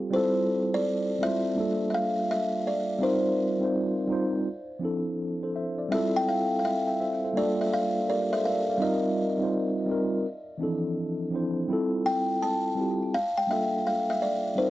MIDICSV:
0, 0, Header, 1, 3, 480
1, 0, Start_track
1, 0, Key_signature, -1, "major"
1, 0, Tempo, 722892
1, 84, Time_signature, 4, 2, 24, 8
1, 9761, End_track
2, 0, Start_track
2, 0, Title_t, "Kalimba"
2, 0, Program_c, 0, 108
2, 91, Note_on_c, 0, 72, 77
2, 492, Note_on_c, 0, 74, 88
2, 497, Note_off_c, 0, 72, 0
2, 816, Note_on_c, 0, 76, 102
2, 819, Note_off_c, 0, 74, 0
2, 1255, Note_off_c, 0, 76, 0
2, 1263, Note_on_c, 0, 76, 73
2, 1289, Note_off_c, 0, 76, 0
2, 1291, Note_on_c, 0, 77, 108
2, 1533, Note_on_c, 0, 76, 97
2, 1535, Note_off_c, 0, 77, 0
2, 1752, Note_off_c, 0, 76, 0
2, 1773, Note_on_c, 0, 74, 82
2, 2012, Note_on_c, 0, 72, 82
2, 2016, Note_off_c, 0, 74, 0
2, 2942, Note_off_c, 0, 72, 0
2, 3931, Note_on_c, 0, 76, 94
2, 4090, Note_off_c, 0, 76, 0
2, 4093, Note_on_c, 0, 79, 97
2, 4164, Note_off_c, 0, 79, 0
2, 4173, Note_on_c, 0, 77, 92
2, 4368, Note_off_c, 0, 77, 0
2, 4376, Note_on_c, 0, 77, 71
2, 4406, Note_off_c, 0, 77, 0
2, 4414, Note_on_c, 0, 76, 91
2, 4895, Note_on_c, 0, 74, 96
2, 4903, Note_off_c, 0, 76, 0
2, 5052, Note_off_c, 0, 74, 0
2, 5054, Note_on_c, 0, 76, 77
2, 5132, Note_off_c, 0, 76, 0
2, 5137, Note_on_c, 0, 77, 92
2, 5242, Note_off_c, 0, 77, 0
2, 5376, Note_on_c, 0, 74, 87
2, 5530, Note_on_c, 0, 76, 94
2, 5533, Note_off_c, 0, 74, 0
2, 5602, Note_off_c, 0, 76, 0
2, 5613, Note_on_c, 0, 77, 82
2, 5855, Note_on_c, 0, 75, 81
2, 5856, Note_off_c, 0, 77, 0
2, 6303, Note_off_c, 0, 75, 0
2, 8006, Note_on_c, 0, 79, 91
2, 8249, Note_on_c, 0, 81, 92
2, 8252, Note_off_c, 0, 79, 0
2, 8727, Note_on_c, 0, 77, 101
2, 8741, Note_off_c, 0, 81, 0
2, 8873, Note_off_c, 0, 77, 0
2, 8881, Note_on_c, 0, 79, 88
2, 8966, Note_off_c, 0, 79, 0
2, 8968, Note_on_c, 0, 76, 89
2, 9208, Note_on_c, 0, 77, 90
2, 9213, Note_off_c, 0, 76, 0
2, 9362, Note_on_c, 0, 76, 90
2, 9369, Note_off_c, 0, 77, 0
2, 9438, Note_off_c, 0, 76, 0
2, 9444, Note_on_c, 0, 74, 77
2, 9667, Note_off_c, 0, 74, 0
2, 9683, Note_on_c, 0, 72, 82
2, 9761, Note_off_c, 0, 72, 0
2, 9761, End_track
3, 0, Start_track
3, 0, Title_t, "Tine electric piano"
3, 0, Program_c, 1, 4
3, 0, Control_c, 1, 64, 127
3, 0, Note_on_c, 1, 55, 94
3, 0, Note_on_c, 1, 60, 79
3, 0, Note_on_c, 1, 65, 94
3, 0, Note_on_c, 1, 67, 84
3, 0, Note_on_c, 1, 69, 107
3, 71, Note_off_c, 1, 55, 0
3, 71, Note_on_c, 1, 55, 108
3, 81, Note_off_c, 1, 60, 0
3, 81, Note_on_c, 1, 60, 84
3, 88, Note_on_c, 1, 64, 101
3, 94, Control_c, 1, 64, 0
3, 96, Note_off_c, 1, 65, 0
3, 98, Note_off_c, 1, 67, 0
3, 100, Note_off_c, 1, 69, 0
3, 100, Note_on_c, 1, 65, 84
3, 108, Note_on_c, 1, 69, 120
3, 212, Control_c, 1, 64, 127
3, 738, Note_off_c, 1, 55, 0
3, 743, Note_off_c, 1, 60, 0
3, 746, Note_off_c, 1, 64, 0
3, 752, Note_off_c, 1, 65, 0
3, 756, Note_off_c, 1, 69, 0
3, 789, Note_on_c, 1, 55, 80
3, 799, Note_on_c, 1, 60, 76
3, 806, Note_on_c, 1, 64, 76
3, 816, Note_on_c, 1, 65, 77
3, 825, Note_on_c, 1, 72, 92
3, 1021, Note_off_c, 1, 55, 0
3, 1029, Note_on_c, 1, 55, 81
3, 1037, Note_on_c, 1, 58, 79
3, 1041, Note_off_c, 1, 60, 0
3, 1045, Note_off_c, 1, 64, 0
3, 1048, Note_on_c, 1, 62, 85
3, 1049, Note_off_c, 1, 65, 0
3, 1052, Control_c, 1, 64, 0
3, 1055, Note_off_c, 1, 72, 0
3, 1057, Note_on_c, 1, 65, 72
3, 1063, Note_on_c, 1, 69, 91
3, 1164, Control_c, 1, 64, 127
3, 1917, Note_off_c, 1, 55, 0
3, 1921, Note_off_c, 1, 58, 0
3, 1926, Note_off_c, 1, 62, 0
3, 1931, Note_off_c, 1, 65, 0
3, 1934, Note_off_c, 1, 69, 0
3, 1983, Note_on_c, 1, 55, 106
3, 1992, Note_on_c, 1, 60, 90
3, 2002, Note_on_c, 1, 63, 101
3, 2010, Note_on_c, 1, 65, 103
3, 2012, Control_c, 1, 64, 0
3, 2019, Note_on_c, 1, 70, 100
3, 2141, Control_c, 1, 64, 127
3, 2334, Note_off_c, 1, 55, 0
3, 2338, Note_off_c, 1, 60, 0
3, 2343, Note_off_c, 1, 63, 0
3, 2348, Note_off_c, 1, 65, 0
3, 2352, Note_off_c, 1, 70, 0
3, 2381, Note_on_c, 1, 55, 84
3, 2391, Note_on_c, 1, 60, 66
3, 2399, Note_on_c, 1, 63, 68
3, 2409, Note_on_c, 1, 65, 74
3, 2416, Note_on_c, 1, 72, 86
3, 2684, Note_off_c, 1, 55, 0
3, 2689, Note_off_c, 1, 60, 0
3, 2693, Note_off_c, 1, 63, 0
3, 2698, Note_off_c, 1, 65, 0
3, 2701, Note_off_c, 1, 72, 0
3, 2701, Note_on_c, 1, 55, 81
3, 2710, Note_on_c, 1, 60, 74
3, 2719, Note_on_c, 1, 63, 78
3, 2727, Note_on_c, 1, 65, 77
3, 2737, Note_on_c, 1, 72, 94
3, 2953, Note_off_c, 1, 55, 0
3, 2957, Note_off_c, 1, 60, 0
3, 2962, Note_off_c, 1, 63, 0
3, 2966, Note_off_c, 1, 65, 0
3, 2970, Note_off_c, 1, 72, 0
3, 2972, Control_c, 1, 64, 0
3, 3079, Control_c, 1, 64, 127
3, 3182, Note_on_c, 1, 53, 77
3, 3192, Note_on_c, 1, 60, 73
3, 3201, Note_on_c, 1, 62, 72
3, 3209, Note_on_c, 1, 64, 78
3, 3219, Note_on_c, 1, 69, 81
3, 3451, Note_off_c, 1, 69, 0
3, 3605, Note_on_c, 1, 72, 68
3, 3609, Note_on_c, 1, 69, 58
3, 3633, Note_off_c, 1, 53, 0
3, 3638, Note_off_c, 1, 60, 0
3, 3643, Note_off_c, 1, 62, 0
3, 3647, Note_off_c, 1, 64, 0
3, 3681, Note_off_c, 1, 72, 0
3, 3684, Note_off_c, 1, 69, 0
3, 3688, Note_on_c, 1, 76, 74
3, 3692, Note_on_c, 1, 72, 55
3, 3836, Note_off_c, 1, 76, 0
3, 3839, Note_off_c, 1, 72, 0
3, 3840, Note_on_c, 1, 74, 64
3, 3910, Note_on_c, 1, 55, 98
3, 3920, Note_on_c, 1, 60, 95
3, 3929, Note_on_c, 1, 64, 102
3, 3934, Control_c, 1, 64, 0
3, 3938, Note_on_c, 1, 65, 95
3, 3948, Note_on_c, 1, 69, 123
3, 4059, Control_c, 1, 64, 127
3, 4069, Note_off_c, 1, 74, 0
3, 4176, Note_off_c, 1, 69, 0
3, 4564, Note_on_c, 1, 79, 66
3, 4567, Note_on_c, 1, 76, 59
3, 4577, Note_off_c, 1, 55, 0
3, 4582, Note_off_c, 1, 60, 0
3, 4587, Note_off_c, 1, 64, 0
3, 4591, Note_off_c, 1, 65, 0
3, 4641, Note_off_c, 1, 79, 0
3, 4643, Note_off_c, 1, 76, 0
3, 4650, Note_on_c, 1, 76, 77
3, 4653, Note_on_c, 1, 72, 57
3, 4797, Note_off_c, 1, 76, 0
3, 4799, Note_off_c, 1, 72, 0
3, 4808, Note_on_c, 1, 72, 59
3, 4814, Note_on_c, 1, 69, 56
3, 4870, Note_on_c, 1, 55, 91
3, 4880, Note_on_c, 1, 58, 85
3, 4888, Note_on_c, 1, 62, 77
3, 4893, Control_c, 1, 64, 0
3, 4898, Note_off_c, 1, 69, 0
3, 4898, Note_on_c, 1, 65, 87
3, 4906, Note_on_c, 1, 69, 97
3, 5018, Control_c, 1, 64, 127
3, 5034, Note_off_c, 1, 72, 0
3, 5367, Note_on_c, 1, 70, 70
3, 5371, Note_on_c, 1, 67, 57
3, 5375, Note_off_c, 1, 69, 0
3, 5516, Note_off_c, 1, 70, 0
3, 5518, Note_off_c, 1, 67, 0
3, 5534, Note_on_c, 1, 72, 76
3, 5538, Note_on_c, 1, 69, 66
3, 5606, Note_off_c, 1, 72, 0
3, 5606, Note_on_c, 1, 74, 64
3, 5608, Note_off_c, 1, 69, 0
3, 5610, Note_on_c, 1, 70, 64
3, 5756, Note_off_c, 1, 74, 0
3, 5757, Note_off_c, 1, 55, 0
3, 5758, Note_off_c, 1, 70, 0
3, 5762, Note_off_c, 1, 58, 0
3, 5767, Note_off_c, 1, 62, 0
3, 5771, Note_off_c, 1, 65, 0
3, 5777, Note_on_c, 1, 77, 65
3, 5780, Note_on_c, 1, 74, 51
3, 5829, Note_on_c, 1, 55, 116
3, 5837, Note_on_c, 1, 60, 89
3, 5844, Note_on_c, 1, 63, 93
3, 5851, Control_c, 1, 64, 0
3, 5854, Note_on_c, 1, 65, 94
3, 5864, Note_on_c, 1, 70, 112
3, 5958, Control_c, 1, 64, 127
3, 5998, Note_off_c, 1, 77, 0
3, 6000, Note_off_c, 1, 74, 0
3, 6177, Note_off_c, 1, 55, 0
3, 6181, Note_off_c, 1, 60, 0
3, 6185, Note_off_c, 1, 63, 0
3, 6190, Note_off_c, 1, 65, 0
3, 6195, Note_off_c, 1, 70, 0
3, 6227, Note_on_c, 1, 55, 79
3, 6236, Note_on_c, 1, 60, 69
3, 6246, Note_on_c, 1, 63, 76
3, 6255, Note_on_c, 1, 65, 78
3, 6265, Note_on_c, 1, 72, 76
3, 6526, Note_off_c, 1, 55, 0
3, 6531, Note_off_c, 1, 60, 0
3, 6536, Note_off_c, 1, 63, 0
3, 6541, Note_off_c, 1, 65, 0
3, 6545, Note_on_c, 1, 55, 92
3, 6546, Note_off_c, 1, 72, 0
3, 6554, Note_on_c, 1, 60, 70
3, 6563, Note_on_c, 1, 63, 69
3, 6573, Note_on_c, 1, 65, 76
3, 6582, Note_on_c, 1, 70, 100
3, 6794, Note_off_c, 1, 55, 0
3, 6799, Note_off_c, 1, 60, 0
3, 6803, Note_off_c, 1, 63, 0
3, 6809, Note_off_c, 1, 65, 0
3, 6811, Control_c, 1, 64, 0
3, 6813, Note_off_c, 1, 70, 0
3, 6930, Control_c, 1, 64, 127
3, 7024, Note_on_c, 1, 52, 63
3, 7035, Note_on_c, 1, 60, 72
3, 7044, Note_on_c, 1, 62, 81
3, 7052, Note_on_c, 1, 64, 73
3, 7061, Note_on_c, 1, 69, 87
3, 7067, Note_on_c, 1, 53, 79
3, 7091, Note_off_c, 1, 52, 0
3, 7480, Note_off_c, 1, 60, 0
3, 7484, Note_off_c, 1, 62, 0
3, 7488, Note_off_c, 1, 64, 0
3, 7493, Note_off_c, 1, 69, 0
3, 7496, Note_off_c, 1, 53, 0
3, 7506, Note_on_c, 1, 53, 70
3, 7515, Note_on_c, 1, 60, 73
3, 7523, Note_on_c, 1, 62, 71
3, 7533, Note_on_c, 1, 64, 74
3, 7541, Note_on_c, 1, 72, 82
3, 7735, Note_off_c, 1, 53, 0
3, 7740, Note_off_c, 1, 60, 0
3, 7744, Note_off_c, 1, 62, 0
3, 7748, Note_off_c, 1, 64, 0
3, 7751, Note_on_c, 1, 55, 81
3, 7752, Note_off_c, 1, 72, 0
3, 7760, Note_on_c, 1, 60, 83
3, 7767, Note_on_c, 1, 64, 83
3, 7773, Control_c, 1, 64, 0
3, 7776, Note_on_c, 1, 65, 77
3, 7788, Note_on_c, 1, 69, 102
3, 7904, Control_c, 1, 64, 127
3, 8418, Note_off_c, 1, 55, 0
3, 8422, Note_off_c, 1, 60, 0
3, 8426, Note_off_c, 1, 64, 0
3, 8430, Note_off_c, 1, 65, 0
3, 8436, Note_off_c, 1, 69, 0
3, 8465, Note_on_c, 1, 55, 80
3, 8475, Note_on_c, 1, 60, 69
3, 8483, Note_on_c, 1, 64, 70
3, 8492, Note_on_c, 1, 65, 66
3, 8501, Note_on_c, 1, 67, 73
3, 8714, Note_off_c, 1, 55, 0
3, 8720, Note_off_c, 1, 60, 0
3, 8724, Note_off_c, 1, 64, 0
3, 8728, Note_off_c, 1, 65, 0
3, 8732, Note_off_c, 1, 67, 0
3, 8733, Control_c, 1, 64, 0
3, 8852, Control_c, 1, 64, 127
3, 8946, Note_on_c, 1, 55, 66
3, 8955, Note_on_c, 1, 58, 65
3, 8964, Note_on_c, 1, 62, 62
3, 8974, Note_on_c, 1, 65, 58
3, 8983, Note_on_c, 1, 69, 76
3, 9615, Note_off_c, 1, 55, 0
3, 9620, Note_off_c, 1, 58, 0
3, 9624, Note_off_c, 1, 62, 0
3, 9630, Note_off_c, 1, 65, 0
3, 9634, Note_off_c, 1, 69, 0
3, 9666, Note_on_c, 1, 55, 87
3, 9674, Note_on_c, 1, 60, 77
3, 9684, Note_on_c, 1, 63, 85
3, 9692, Control_c, 1, 64, 0
3, 9692, Note_on_c, 1, 65, 76
3, 9701, Note_on_c, 1, 70, 99
3, 9761, Note_off_c, 1, 55, 0
3, 9761, Note_off_c, 1, 60, 0
3, 9761, Note_off_c, 1, 63, 0
3, 9761, Note_off_c, 1, 65, 0
3, 9761, Note_off_c, 1, 70, 0
3, 9761, End_track
0, 0, End_of_file